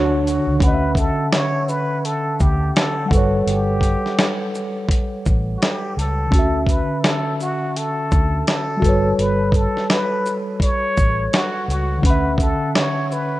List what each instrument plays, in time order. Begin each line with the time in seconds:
Already playing: fingered electric bass D2, tine electric piano D3 D4 F#4 C#5, muted trumpet F#4
0.27 muted trumpet F#4, closed hi-hat, shaker
0.47 fingered electric bass C#2
0.56 tine electric piano D3 C#4
0.60 fingered electric bass D2, muted trumpet B4, tine electric piano F#5, kick, closed hi-hat
0.68 tine electric piano D#5
0.74 tine electric piano E5
0.95 muted trumpet A4, kick, closed hi-hat, shaker
1.33 muted trumpet C#5, snare, closed hi-hat
1.69 muted trumpet B4, shaker
2.05 muted trumpet A4, closed hi-hat
2.40 fingered electric bass D2, muted trumpet G4, kick, shaker
2.76 muted trumpet A4, snare, closed hi-hat
3.06 tine electric piano G3 F#5
3.11 fingered electric bass G1, muted trumpet F#4, tine electric piano A4 B4, kick, closed hi-hat, shaker
3.17 tine electric piano C#5
3.47 fingered electric bass G1, muted trumpet G4, closed hi-hat
3.81 kick, closed hi-hat, shaker
4.06 snare
4.19 snare, closed hi-hat
4.55 shaker
4.89 kick, closed hi-hat
5.26 fingered electric bass A1, kick, shaker
5.57 muted trumpet F#4
5.62 muted trumpet G4, snare, closed hi-hat
5.97 fingered electric bass C#2, muted trumpet A4, closed hi-hat, shaker
6.27 tine electric piano D3 C#4
6.32 fingered electric bass D2, tine electric piano F#4, kick, closed hi-hat
6.39 tine electric piano E5
6.66 muted trumpet B4, kick, closed hi-hat, shaker
7.04 muted trumpet A4, snare, closed hi-hat
7.40 muted trumpet F#4, shaker
7.77 muted trumpet A4, closed hi-hat
8.12 fingered electric bass D2, kick, shaker
8.47 muted trumpet A4, snare, closed hi-hat
8.77 tine electric piano G3 F#4
8.82 fingered electric bass G1, tine electric piano A4 B4, kick, closed hi-hat, shaker
8.89 tine electric piano C#5
9.18 fingered electric bass G1, muted trumpet B4, closed hi-hat
9.52 muted trumpet A4, kick, closed hi-hat, shaker
9.77 snare
9.90 muted trumpet B4, snare, closed hi-hat
10.26 shaker
10.60 muted trumpet C#5, kick, closed hi-hat
10.97 fingered electric bass A1, kick, shaker
11.33 muted trumpet F#4, snare, closed hi-hat
11.68 fingered electric bass C#2, muted trumpet F#4, closed hi-hat, shaker
11.98 tine electric piano D3 C#4
12.03 fingered electric bass D2, muted trumpet B4, tine electric piano F#5, kick, closed hi-hat
12.10 tine electric piano E5
12.38 muted trumpet A4, kick, closed hi-hat, shaker
12.75 muted trumpet C#5, snare, closed hi-hat
13.12 muted trumpet B4, shaker